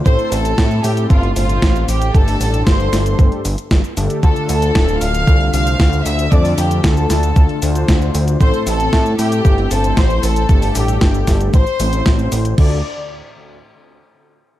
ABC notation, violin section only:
X:1
M:4/4
L:1/8
Q:1/4=115
K:Dm
V:1 name="Violin section"
[cc'] [Aa]2 [Gg] [Ff] [Ff]2 [Gg] | [Aa]2 [cc']2 z4 | [Aa] [Aa]2 [ff']2 [ff']2 [ee'] | [dd'] [Gg] [Aa]4 z2 |
[cc'] [Aa]2 [Gg]2 [Aa] [cc'] [Aa]- | [Aa] [Gg]2 z [cc']3 z | d z6 z |]